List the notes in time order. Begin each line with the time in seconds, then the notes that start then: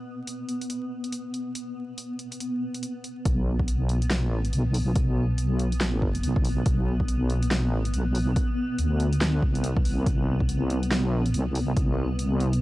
Already playing: B3
0.27 closed hi-hat
0.49 closed hi-hat
0.61 closed hi-hat
0.70 closed hi-hat
1.04 closed hi-hat
1.12 closed hi-hat
1.34 closed hi-hat
1.55 closed hi-hat
1.98 closed hi-hat
2.19 closed hi-hat
2.32 closed hi-hat
2.40 closed hi-hat
2.74 closed hi-hat
2.83 closed hi-hat
3.04 closed hi-hat
3.25 B1 B3, kick, closed hi-hat
3.60 kick
3.68 closed hi-hat
3.89 closed hi-hat
4.02 closed hi-hat
4.10 snare, closed hi-hat
4.14 A#1
4.39 A1
4.45 closed hi-hat
4.53 B1, closed hi-hat
4.74 open hi-hat
4.96 B1, kick, closed hi-hat
5.38 closed hi-hat
5.59 closed hi-hat
5.72 closed hi-hat
5.81 snare, closed hi-hat
6.02 kick
6.15 closed hi-hat
6.23 B1, closed hi-hat
6.36 kick
6.45 open hi-hat
6.66 B1, kick, closed hi-hat
7.00 kick
7.08 closed hi-hat
7.30 closed hi-hat
7.43 closed hi-hat
7.51 A#1, snare, closed hi-hat
7.80 A1
7.85 closed hi-hat
7.94 B1, closed hi-hat
8.15 open hi-hat
8.36 kick, closed hi-hat
8.79 D2, closed hi-hat
9.00 closed hi-hat
9.13 closed hi-hat
9.21 snare, closed hi-hat
9.42 C2, kick
9.55 closed hi-hat
9.64 closed hi-hat
9.77 kick
9.85 open hi-hat
10.06 C2, kick, closed hi-hat
10.40 kick
10.49 closed hi-hat
10.70 closed hi-hat
10.83 closed hi-hat
10.91 snare, closed hi-hat
10.95 B1
11.20 A#1
11.26 closed hi-hat
11.34 C2, closed hi-hat
11.55 open hi-hat
11.77 C2, kick, closed hi-hat
12.19 closed hi-hat
12.40 closed hi-hat
12.53 closed hi-hat